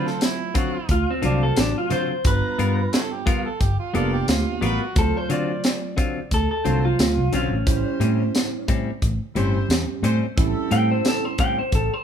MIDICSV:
0, 0, Header, 1, 8, 480
1, 0, Start_track
1, 0, Tempo, 676437
1, 1597, Time_signature, 4, 2, 24, 8
1, 8541, End_track
2, 0, Start_track
2, 0, Title_t, "Clean electric guitar"
2, 0, Program_c, 0, 27
2, 648, Note_on_c, 0, 65, 88
2, 768, Note_off_c, 0, 65, 0
2, 784, Note_on_c, 0, 60, 82
2, 882, Note_off_c, 0, 60, 0
2, 888, Note_on_c, 0, 62, 83
2, 1008, Note_off_c, 0, 62, 0
2, 1014, Note_on_c, 0, 69, 72
2, 1117, Note_off_c, 0, 69, 0
2, 1131, Note_on_c, 0, 62, 80
2, 1250, Note_off_c, 0, 62, 0
2, 1262, Note_on_c, 0, 65, 79
2, 1361, Note_off_c, 0, 65, 0
2, 1364, Note_on_c, 0, 72, 72
2, 1594, Note_off_c, 0, 72, 0
2, 1612, Note_on_c, 0, 71, 91
2, 2071, Note_off_c, 0, 71, 0
2, 3537, Note_on_c, 0, 69, 79
2, 3669, Note_off_c, 0, 69, 0
2, 3669, Note_on_c, 0, 72, 80
2, 3775, Note_off_c, 0, 72, 0
2, 3775, Note_on_c, 0, 74, 74
2, 4467, Note_off_c, 0, 74, 0
2, 4499, Note_on_c, 0, 69, 82
2, 4612, Note_off_c, 0, 69, 0
2, 4620, Note_on_c, 0, 69, 77
2, 4848, Note_off_c, 0, 69, 0
2, 4860, Note_on_c, 0, 65, 82
2, 5195, Note_off_c, 0, 65, 0
2, 5215, Note_on_c, 0, 61, 75
2, 6139, Note_off_c, 0, 61, 0
2, 7607, Note_on_c, 0, 79, 94
2, 7729, Note_off_c, 0, 79, 0
2, 7745, Note_on_c, 0, 72, 89
2, 7844, Note_off_c, 0, 72, 0
2, 7861, Note_on_c, 0, 69, 80
2, 7983, Note_off_c, 0, 69, 0
2, 7983, Note_on_c, 0, 72, 84
2, 8083, Note_off_c, 0, 72, 0
2, 8091, Note_on_c, 0, 79, 94
2, 8210, Note_off_c, 0, 79, 0
2, 8222, Note_on_c, 0, 72, 84
2, 8322, Note_off_c, 0, 72, 0
2, 8337, Note_on_c, 0, 69, 82
2, 8469, Note_off_c, 0, 69, 0
2, 8469, Note_on_c, 0, 72, 95
2, 8541, Note_off_c, 0, 72, 0
2, 8541, End_track
3, 0, Start_track
3, 0, Title_t, "Horn section"
3, 0, Program_c, 1, 61
3, 0, Note_on_c, 1, 65, 84
3, 0, Note_on_c, 1, 72, 87
3, 149, Note_off_c, 1, 65, 0
3, 150, Note_off_c, 1, 72, 0
3, 875, Note_on_c, 1, 66, 64
3, 876, Note_on_c, 1, 72, 80
3, 877, Note_on_c, 1, 77, 68
3, 1116, Note_off_c, 1, 66, 0
3, 1116, Note_off_c, 1, 72, 0
3, 1116, Note_off_c, 1, 77, 0
3, 1357, Note_on_c, 1, 65, 65
3, 1359, Note_on_c, 1, 66, 62
3, 1362, Note_on_c, 1, 72, 73
3, 1471, Note_off_c, 1, 65, 0
3, 1473, Note_off_c, 1, 66, 0
3, 1476, Note_off_c, 1, 72, 0
3, 1593, Note_on_c, 1, 65, 68
3, 1593, Note_on_c, 1, 71, 79
3, 1594, Note_on_c, 1, 82, 66
3, 2075, Note_off_c, 1, 65, 0
3, 2076, Note_off_c, 1, 71, 0
3, 2076, Note_off_c, 1, 82, 0
3, 2802, Note_on_c, 1, 65, 77
3, 2804, Note_on_c, 1, 70, 79
3, 2804, Note_on_c, 1, 74, 90
3, 3041, Note_off_c, 1, 65, 0
3, 3041, Note_off_c, 1, 74, 0
3, 3042, Note_off_c, 1, 70, 0
3, 3294, Note_on_c, 1, 65, 76
3, 3297, Note_on_c, 1, 71, 91
3, 3298, Note_on_c, 1, 70, 71
3, 3408, Note_off_c, 1, 65, 0
3, 3410, Note_off_c, 1, 71, 0
3, 3411, Note_off_c, 1, 70, 0
3, 3530, Note_on_c, 1, 65, 67
3, 3534, Note_on_c, 1, 72, 73
3, 4006, Note_off_c, 1, 65, 0
3, 4007, Note_off_c, 1, 72, 0
3, 4712, Note_on_c, 1, 72, 78
3, 4714, Note_on_c, 1, 54, 59
3, 4714, Note_on_c, 1, 65, 67
3, 4957, Note_off_c, 1, 65, 0
3, 4957, Note_off_c, 1, 72, 0
3, 4958, Note_off_c, 1, 54, 0
3, 5202, Note_on_c, 1, 65, 65
3, 5205, Note_on_c, 1, 72, 70
3, 5207, Note_on_c, 1, 66, 57
3, 5315, Note_off_c, 1, 65, 0
3, 5319, Note_off_c, 1, 72, 0
3, 5321, Note_off_c, 1, 66, 0
3, 5444, Note_on_c, 1, 72, 78
3, 5445, Note_on_c, 1, 67, 63
3, 5923, Note_off_c, 1, 67, 0
3, 5923, Note_off_c, 1, 72, 0
3, 6635, Note_on_c, 1, 64, 82
3, 6638, Note_on_c, 1, 67, 79
3, 6640, Note_on_c, 1, 72, 92
3, 6878, Note_off_c, 1, 64, 0
3, 6879, Note_off_c, 1, 67, 0
3, 6880, Note_off_c, 1, 72, 0
3, 7109, Note_on_c, 1, 67, 67
3, 7114, Note_on_c, 1, 61, 72
3, 7115, Note_on_c, 1, 72, 89
3, 7222, Note_off_c, 1, 67, 0
3, 7227, Note_off_c, 1, 61, 0
3, 7228, Note_off_c, 1, 72, 0
3, 7355, Note_on_c, 1, 67, 79
3, 7358, Note_on_c, 1, 69, 87
3, 7837, Note_off_c, 1, 67, 0
3, 7838, Note_off_c, 1, 69, 0
3, 8541, End_track
4, 0, Start_track
4, 0, Title_t, "Harmonica"
4, 0, Program_c, 2, 22
4, 55, Note_on_c, 2, 69, 87
4, 153, Note_off_c, 2, 69, 0
4, 166, Note_on_c, 2, 64, 77
4, 393, Note_off_c, 2, 64, 0
4, 406, Note_on_c, 2, 66, 83
4, 634, Note_off_c, 2, 66, 0
4, 2084, Note_on_c, 2, 64, 70
4, 2084, Note_on_c, 2, 66, 70
4, 2084, Note_on_c, 2, 69, 100
4, 2136, Note_off_c, 2, 66, 0
4, 2147, Note_off_c, 2, 64, 0
4, 2220, Note_on_c, 2, 67, 80
4, 2230, Note_off_c, 2, 69, 0
4, 2317, Note_off_c, 2, 67, 0
4, 2327, Note_on_c, 2, 65, 78
4, 2444, Note_off_c, 2, 65, 0
4, 2450, Note_on_c, 2, 69, 83
4, 2561, Note_on_c, 2, 67, 75
4, 2572, Note_off_c, 2, 69, 0
4, 2681, Note_off_c, 2, 67, 0
4, 2691, Note_on_c, 2, 65, 75
4, 2792, Note_off_c, 2, 65, 0
4, 2799, Note_on_c, 2, 69, 81
4, 2920, Note_off_c, 2, 69, 0
4, 2930, Note_on_c, 2, 67, 82
4, 3032, Note_off_c, 2, 67, 0
4, 3038, Note_on_c, 2, 65, 82
4, 3282, Note_on_c, 2, 66, 91
4, 3292, Note_off_c, 2, 65, 0
4, 3514, Note_off_c, 2, 66, 0
4, 8541, End_track
5, 0, Start_track
5, 0, Title_t, "Tine electric piano"
5, 0, Program_c, 3, 4
5, 0, Note_on_c, 3, 54, 75
5, 0, Note_on_c, 3, 57, 70
5, 0, Note_on_c, 3, 60, 78
5, 0, Note_on_c, 3, 65, 91
5, 364, Note_off_c, 3, 54, 0
5, 367, Note_off_c, 3, 57, 0
5, 368, Note_off_c, 3, 60, 0
5, 370, Note_off_c, 3, 65, 0
5, 873, Note_on_c, 3, 54, 62
5, 877, Note_on_c, 3, 57, 59
5, 877, Note_on_c, 3, 60, 61
5, 879, Note_on_c, 3, 66, 76
5, 1396, Note_off_c, 3, 54, 0
5, 1398, Note_off_c, 3, 57, 0
5, 1398, Note_off_c, 3, 60, 0
5, 1399, Note_off_c, 3, 66, 0
5, 1593, Note_on_c, 3, 55, 69
5, 1594, Note_on_c, 3, 59, 60
5, 1596, Note_on_c, 3, 62, 65
5, 1598, Note_on_c, 3, 65, 77
5, 2289, Note_off_c, 3, 55, 0
5, 2289, Note_off_c, 3, 59, 0
5, 2290, Note_off_c, 3, 62, 0
5, 2291, Note_off_c, 3, 65, 0
5, 2796, Note_on_c, 3, 59, 71
5, 2797, Note_on_c, 3, 58, 75
5, 2800, Note_on_c, 3, 62, 76
5, 2802, Note_on_c, 3, 67, 88
5, 3319, Note_off_c, 3, 58, 0
5, 3319, Note_off_c, 3, 59, 0
5, 3321, Note_off_c, 3, 62, 0
5, 3322, Note_off_c, 3, 67, 0
5, 3514, Note_on_c, 3, 54, 72
5, 3517, Note_on_c, 3, 57, 63
5, 3521, Note_on_c, 3, 60, 60
5, 3521, Note_on_c, 3, 65, 76
5, 4211, Note_off_c, 3, 54, 0
5, 4212, Note_off_c, 3, 57, 0
5, 4214, Note_off_c, 3, 60, 0
5, 4214, Note_off_c, 3, 65, 0
5, 4718, Note_on_c, 3, 54, 67
5, 4720, Note_on_c, 3, 57, 60
5, 4724, Note_on_c, 3, 60, 63
5, 4724, Note_on_c, 3, 65, 71
5, 5241, Note_off_c, 3, 54, 0
5, 5242, Note_off_c, 3, 57, 0
5, 5243, Note_off_c, 3, 65, 0
5, 5244, Note_off_c, 3, 60, 0
5, 5439, Note_on_c, 3, 55, 68
5, 5442, Note_on_c, 3, 72, 63
5, 5446, Note_on_c, 3, 61, 64
5, 5447, Note_on_c, 3, 64, 78
5, 6133, Note_off_c, 3, 55, 0
5, 6134, Note_off_c, 3, 72, 0
5, 6136, Note_off_c, 3, 61, 0
5, 6137, Note_off_c, 3, 64, 0
5, 6642, Note_on_c, 3, 55, 77
5, 6644, Note_on_c, 3, 60, 73
5, 6647, Note_on_c, 3, 61, 70
5, 6648, Note_on_c, 3, 67, 87
5, 7162, Note_off_c, 3, 55, 0
5, 7163, Note_off_c, 3, 60, 0
5, 7164, Note_off_c, 3, 61, 0
5, 7165, Note_off_c, 3, 67, 0
5, 7359, Note_on_c, 3, 55, 83
5, 7363, Note_on_c, 3, 60, 73
5, 7363, Note_on_c, 3, 61, 76
5, 7365, Note_on_c, 3, 64, 94
5, 8051, Note_off_c, 3, 55, 0
5, 8053, Note_off_c, 3, 60, 0
5, 8053, Note_off_c, 3, 61, 0
5, 8054, Note_off_c, 3, 64, 0
5, 8541, End_track
6, 0, Start_track
6, 0, Title_t, "Clean electric guitar"
6, 0, Program_c, 4, 27
6, 386, Note_on_c, 4, 50, 72
6, 389, Note_on_c, 4, 54, 89
6, 392, Note_on_c, 4, 60, 92
6, 394, Note_on_c, 4, 65, 82
6, 542, Note_off_c, 4, 50, 0
6, 544, Note_off_c, 4, 54, 0
6, 545, Note_off_c, 4, 60, 0
6, 546, Note_off_c, 4, 65, 0
6, 866, Note_on_c, 4, 50, 75
6, 869, Note_on_c, 4, 54, 65
6, 872, Note_on_c, 4, 60, 80
6, 876, Note_on_c, 4, 65, 81
6, 1023, Note_off_c, 4, 50, 0
6, 1024, Note_off_c, 4, 54, 0
6, 1026, Note_off_c, 4, 60, 0
6, 1028, Note_off_c, 4, 65, 0
6, 1350, Note_on_c, 4, 50, 70
6, 1352, Note_on_c, 4, 54, 78
6, 1356, Note_on_c, 4, 60, 84
6, 1359, Note_on_c, 4, 65, 84
6, 1505, Note_off_c, 4, 50, 0
6, 1506, Note_off_c, 4, 54, 0
6, 1508, Note_off_c, 4, 60, 0
6, 1510, Note_off_c, 4, 65, 0
6, 1835, Note_on_c, 4, 55, 78
6, 1837, Note_on_c, 4, 59, 74
6, 1841, Note_on_c, 4, 65, 81
6, 1843, Note_on_c, 4, 70, 78
6, 1988, Note_off_c, 4, 55, 0
6, 1989, Note_off_c, 4, 59, 0
6, 1991, Note_off_c, 4, 65, 0
6, 1992, Note_off_c, 4, 70, 0
6, 2313, Note_on_c, 4, 55, 77
6, 2317, Note_on_c, 4, 59, 84
6, 2318, Note_on_c, 4, 65, 90
6, 2323, Note_on_c, 4, 70, 89
6, 2467, Note_off_c, 4, 55, 0
6, 2469, Note_off_c, 4, 59, 0
6, 2470, Note_off_c, 4, 65, 0
6, 2473, Note_off_c, 4, 70, 0
6, 2793, Note_on_c, 4, 55, 81
6, 2797, Note_on_c, 4, 59, 80
6, 2802, Note_on_c, 4, 65, 84
6, 2806, Note_on_c, 4, 70, 86
6, 2948, Note_off_c, 4, 55, 0
6, 2950, Note_off_c, 4, 59, 0
6, 2952, Note_off_c, 4, 65, 0
6, 2954, Note_off_c, 4, 70, 0
6, 3273, Note_on_c, 4, 55, 78
6, 3277, Note_on_c, 4, 59, 81
6, 3282, Note_on_c, 4, 65, 87
6, 3285, Note_on_c, 4, 70, 98
6, 3428, Note_off_c, 4, 55, 0
6, 3430, Note_off_c, 4, 59, 0
6, 3433, Note_off_c, 4, 65, 0
6, 3434, Note_off_c, 4, 70, 0
6, 3756, Note_on_c, 4, 50, 73
6, 3760, Note_on_c, 4, 54, 68
6, 3765, Note_on_c, 4, 60, 80
6, 3767, Note_on_c, 4, 65, 77
6, 3910, Note_off_c, 4, 50, 0
6, 3912, Note_off_c, 4, 54, 0
6, 3914, Note_off_c, 4, 60, 0
6, 3915, Note_off_c, 4, 65, 0
6, 4234, Note_on_c, 4, 50, 61
6, 4239, Note_on_c, 4, 54, 72
6, 4242, Note_on_c, 4, 60, 81
6, 4245, Note_on_c, 4, 65, 81
6, 4389, Note_off_c, 4, 50, 0
6, 4392, Note_off_c, 4, 54, 0
6, 4393, Note_off_c, 4, 60, 0
6, 4395, Note_off_c, 4, 65, 0
6, 4718, Note_on_c, 4, 50, 71
6, 4720, Note_on_c, 4, 54, 74
6, 4724, Note_on_c, 4, 60, 81
6, 4726, Note_on_c, 4, 65, 73
6, 4871, Note_off_c, 4, 50, 0
6, 4872, Note_off_c, 4, 54, 0
6, 4874, Note_off_c, 4, 60, 0
6, 4875, Note_off_c, 4, 65, 0
6, 5198, Note_on_c, 4, 50, 71
6, 5202, Note_on_c, 4, 54, 72
6, 5205, Note_on_c, 4, 60, 75
6, 5208, Note_on_c, 4, 65, 81
6, 5351, Note_off_c, 4, 50, 0
6, 5353, Note_off_c, 4, 54, 0
6, 5355, Note_off_c, 4, 60, 0
6, 5356, Note_off_c, 4, 65, 0
6, 5678, Note_on_c, 4, 45, 75
6, 5680, Note_on_c, 4, 55, 68
6, 5685, Note_on_c, 4, 60, 74
6, 5686, Note_on_c, 4, 61, 81
6, 5831, Note_off_c, 4, 45, 0
6, 5832, Note_off_c, 4, 55, 0
6, 5835, Note_off_c, 4, 60, 0
6, 5835, Note_off_c, 4, 61, 0
6, 6161, Note_on_c, 4, 45, 83
6, 6162, Note_on_c, 4, 55, 86
6, 6168, Note_on_c, 4, 60, 83
6, 6169, Note_on_c, 4, 61, 82
6, 6312, Note_off_c, 4, 45, 0
6, 6313, Note_off_c, 4, 55, 0
6, 6316, Note_off_c, 4, 60, 0
6, 6317, Note_off_c, 4, 61, 0
6, 6638, Note_on_c, 4, 45, 73
6, 6644, Note_on_c, 4, 55, 89
6, 6646, Note_on_c, 4, 60, 85
6, 6648, Note_on_c, 4, 61, 92
6, 6791, Note_off_c, 4, 45, 0
6, 6794, Note_off_c, 4, 55, 0
6, 6795, Note_off_c, 4, 60, 0
6, 6796, Note_off_c, 4, 61, 0
6, 7118, Note_on_c, 4, 45, 81
6, 7122, Note_on_c, 4, 55, 91
6, 7126, Note_on_c, 4, 60, 88
6, 7127, Note_on_c, 4, 61, 92
6, 7270, Note_off_c, 4, 45, 0
6, 7272, Note_off_c, 4, 55, 0
6, 7275, Note_off_c, 4, 60, 0
6, 7275, Note_off_c, 4, 61, 0
6, 7598, Note_on_c, 4, 45, 68
6, 7604, Note_on_c, 4, 55, 77
6, 7607, Note_on_c, 4, 60, 79
6, 7609, Note_on_c, 4, 61, 78
6, 7750, Note_off_c, 4, 45, 0
6, 7753, Note_off_c, 4, 55, 0
6, 7755, Note_off_c, 4, 60, 0
6, 7756, Note_off_c, 4, 61, 0
6, 8079, Note_on_c, 4, 45, 62
6, 8083, Note_on_c, 4, 55, 76
6, 8086, Note_on_c, 4, 60, 79
6, 8092, Note_on_c, 4, 61, 79
6, 8230, Note_off_c, 4, 45, 0
6, 8232, Note_off_c, 4, 55, 0
6, 8234, Note_off_c, 4, 60, 0
6, 8237, Note_off_c, 4, 61, 0
6, 8541, End_track
7, 0, Start_track
7, 0, Title_t, "Fingered electric bass"
7, 0, Program_c, 5, 33
7, 0, Note_on_c, 5, 50, 77
7, 107, Note_off_c, 5, 50, 0
7, 631, Note_on_c, 5, 38, 95
7, 737, Note_off_c, 5, 38, 0
7, 876, Note_on_c, 5, 36, 80
7, 1069, Note_off_c, 5, 36, 0
7, 1116, Note_on_c, 5, 33, 84
7, 1220, Note_off_c, 5, 33, 0
7, 1355, Note_on_c, 5, 50, 94
7, 1460, Note_off_c, 5, 50, 0
7, 1596, Note_on_c, 5, 31, 103
7, 1701, Note_off_c, 5, 31, 0
7, 1835, Note_on_c, 5, 43, 82
7, 2029, Note_off_c, 5, 43, 0
7, 2559, Note_on_c, 5, 31, 90
7, 2663, Note_off_c, 5, 31, 0
7, 2800, Note_on_c, 5, 29, 79
7, 2993, Note_off_c, 5, 29, 0
7, 3038, Note_on_c, 5, 38, 89
7, 3143, Note_off_c, 5, 38, 0
7, 3278, Note_on_c, 5, 33, 95
7, 3383, Note_off_c, 5, 33, 0
7, 3520, Note_on_c, 5, 38, 98
7, 3625, Note_off_c, 5, 38, 0
7, 3758, Note_on_c, 5, 50, 82
7, 3952, Note_off_c, 5, 50, 0
7, 4478, Note_on_c, 5, 38, 94
7, 4584, Note_off_c, 5, 38, 0
7, 4724, Note_on_c, 5, 36, 79
7, 4916, Note_off_c, 5, 36, 0
7, 4963, Note_on_c, 5, 38, 79
7, 5079, Note_off_c, 5, 38, 0
7, 5090, Note_on_c, 5, 36, 81
7, 5189, Note_off_c, 5, 36, 0
7, 5199, Note_on_c, 5, 35, 78
7, 5317, Note_off_c, 5, 35, 0
7, 5331, Note_on_c, 5, 33, 78
7, 5430, Note_off_c, 5, 33, 0
7, 5439, Note_on_c, 5, 33, 99
7, 5544, Note_off_c, 5, 33, 0
7, 5676, Note_on_c, 5, 45, 82
7, 5871, Note_off_c, 5, 45, 0
7, 6404, Note_on_c, 5, 33, 88
7, 6507, Note_off_c, 5, 33, 0
7, 6637, Note_on_c, 5, 31, 75
7, 6831, Note_off_c, 5, 31, 0
7, 6876, Note_on_c, 5, 40, 87
7, 6982, Note_off_c, 5, 40, 0
7, 7113, Note_on_c, 5, 45, 93
7, 7220, Note_off_c, 5, 45, 0
7, 7362, Note_on_c, 5, 33, 100
7, 7465, Note_off_c, 5, 33, 0
7, 7600, Note_on_c, 5, 45, 82
7, 7792, Note_off_c, 5, 45, 0
7, 8320, Note_on_c, 5, 33, 98
7, 8423, Note_off_c, 5, 33, 0
7, 8541, End_track
8, 0, Start_track
8, 0, Title_t, "Drums"
8, 49, Note_on_c, 9, 38, 32
8, 120, Note_off_c, 9, 38, 0
8, 149, Note_on_c, 9, 42, 80
8, 149, Note_on_c, 9, 54, 96
8, 156, Note_on_c, 9, 38, 97
8, 220, Note_off_c, 9, 42, 0
8, 220, Note_off_c, 9, 54, 0
8, 227, Note_off_c, 9, 38, 0
8, 389, Note_on_c, 9, 42, 64
8, 391, Note_on_c, 9, 36, 83
8, 460, Note_off_c, 9, 42, 0
8, 462, Note_off_c, 9, 36, 0
8, 630, Note_on_c, 9, 42, 80
8, 632, Note_on_c, 9, 36, 81
8, 701, Note_off_c, 9, 42, 0
8, 703, Note_off_c, 9, 36, 0
8, 870, Note_on_c, 9, 42, 57
8, 941, Note_off_c, 9, 42, 0
8, 1110, Note_on_c, 9, 42, 87
8, 1110, Note_on_c, 9, 54, 110
8, 1118, Note_on_c, 9, 38, 109
8, 1181, Note_off_c, 9, 42, 0
8, 1181, Note_off_c, 9, 54, 0
8, 1189, Note_off_c, 9, 38, 0
8, 1352, Note_on_c, 9, 42, 62
8, 1423, Note_off_c, 9, 42, 0
8, 1593, Note_on_c, 9, 42, 88
8, 1596, Note_on_c, 9, 36, 108
8, 1664, Note_off_c, 9, 42, 0
8, 1666, Note_off_c, 9, 36, 0
8, 1839, Note_on_c, 9, 42, 64
8, 1910, Note_off_c, 9, 42, 0
8, 2079, Note_on_c, 9, 42, 75
8, 2079, Note_on_c, 9, 54, 95
8, 2086, Note_on_c, 9, 38, 100
8, 2150, Note_off_c, 9, 42, 0
8, 2150, Note_off_c, 9, 54, 0
8, 2157, Note_off_c, 9, 38, 0
8, 2319, Note_on_c, 9, 36, 92
8, 2320, Note_on_c, 9, 42, 60
8, 2390, Note_off_c, 9, 36, 0
8, 2391, Note_off_c, 9, 42, 0
8, 2558, Note_on_c, 9, 42, 73
8, 2559, Note_on_c, 9, 36, 80
8, 2629, Note_off_c, 9, 42, 0
8, 2630, Note_off_c, 9, 36, 0
8, 2801, Note_on_c, 9, 42, 53
8, 2871, Note_off_c, 9, 42, 0
8, 3037, Note_on_c, 9, 42, 82
8, 3037, Note_on_c, 9, 54, 101
8, 3044, Note_on_c, 9, 38, 112
8, 3108, Note_off_c, 9, 42, 0
8, 3108, Note_off_c, 9, 54, 0
8, 3115, Note_off_c, 9, 38, 0
8, 3281, Note_on_c, 9, 42, 57
8, 3352, Note_off_c, 9, 42, 0
8, 3518, Note_on_c, 9, 42, 75
8, 3521, Note_on_c, 9, 36, 105
8, 3589, Note_off_c, 9, 42, 0
8, 3592, Note_off_c, 9, 36, 0
8, 3760, Note_on_c, 9, 42, 57
8, 3831, Note_off_c, 9, 42, 0
8, 4000, Note_on_c, 9, 42, 73
8, 4000, Note_on_c, 9, 54, 101
8, 4007, Note_on_c, 9, 38, 104
8, 4071, Note_off_c, 9, 42, 0
8, 4071, Note_off_c, 9, 54, 0
8, 4078, Note_off_c, 9, 38, 0
8, 4241, Note_on_c, 9, 36, 81
8, 4243, Note_on_c, 9, 42, 63
8, 4312, Note_off_c, 9, 36, 0
8, 4314, Note_off_c, 9, 42, 0
8, 4480, Note_on_c, 9, 36, 75
8, 4480, Note_on_c, 9, 42, 77
8, 4551, Note_off_c, 9, 36, 0
8, 4551, Note_off_c, 9, 42, 0
8, 4722, Note_on_c, 9, 42, 57
8, 4793, Note_off_c, 9, 42, 0
8, 4961, Note_on_c, 9, 42, 82
8, 4961, Note_on_c, 9, 54, 106
8, 4968, Note_on_c, 9, 38, 111
8, 5032, Note_off_c, 9, 42, 0
8, 5032, Note_off_c, 9, 54, 0
8, 5039, Note_off_c, 9, 38, 0
8, 5199, Note_on_c, 9, 42, 64
8, 5270, Note_off_c, 9, 42, 0
8, 5441, Note_on_c, 9, 36, 104
8, 5441, Note_on_c, 9, 42, 83
8, 5512, Note_off_c, 9, 36, 0
8, 5512, Note_off_c, 9, 42, 0
8, 5683, Note_on_c, 9, 42, 59
8, 5754, Note_off_c, 9, 42, 0
8, 5923, Note_on_c, 9, 42, 80
8, 5923, Note_on_c, 9, 54, 104
8, 5930, Note_on_c, 9, 38, 96
8, 5994, Note_off_c, 9, 42, 0
8, 5994, Note_off_c, 9, 54, 0
8, 6001, Note_off_c, 9, 38, 0
8, 6162, Note_on_c, 9, 36, 81
8, 6162, Note_on_c, 9, 42, 68
8, 6233, Note_off_c, 9, 36, 0
8, 6233, Note_off_c, 9, 42, 0
8, 6401, Note_on_c, 9, 42, 73
8, 6402, Note_on_c, 9, 36, 74
8, 6472, Note_off_c, 9, 42, 0
8, 6473, Note_off_c, 9, 36, 0
8, 6642, Note_on_c, 9, 42, 54
8, 6713, Note_off_c, 9, 42, 0
8, 6884, Note_on_c, 9, 42, 82
8, 6884, Note_on_c, 9, 54, 112
8, 6891, Note_on_c, 9, 38, 105
8, 6955, Note_off_c, 9, 42, 0
8, 6955, Note_off_c, 9, 54, 0
8, 6962, Note_off_c, 9, 38, 0
8, 7124, Note_on_c, 9, 42, 59
8, 7195, Note_off_c, 9, 42, 0
8, 7362, Note_on_c, 9, 42, 77
8, 7363, Note_on_c, 9, 36, 107
8, 7433, Note_off_c, 9, 36, 0
8, 7433, Note_off_c, 9, 42, 0
8, 7602, Note_on_c, 9, 42, 60
8, 7673, Note_off_c, 9, 42, 0
8, 7839, Note_on_c, 9, 42, 73
8, 7839, Note_on_c, 9, 54, 96
8, 7846, Note_on_c, 9, 38, 102
8, 7910, Note_off_c, 9, 42, 0
8, 7910, Note_off_c, 9, 54, 0
8, 7917, Note_off_c, 9, 38, 0
8, 8077, Note_on_c, 9, 42, 57
8, 8080, Note_on_c, 9, 36, 87
8, 8148, Note_off_c, 9, 42, 0
8, 8151, Note_off_c, 9, 36, 0
8, 8318, Note_on_c, 9, 42, 71
8, 8320, Note_on_c, 9, 36, 80
8, 8389, Note_off_c, 9, 42, 0
8, 8391, Note_off_c, 9, 36, 0
8, 8541, End_track
0, 0, End_of_file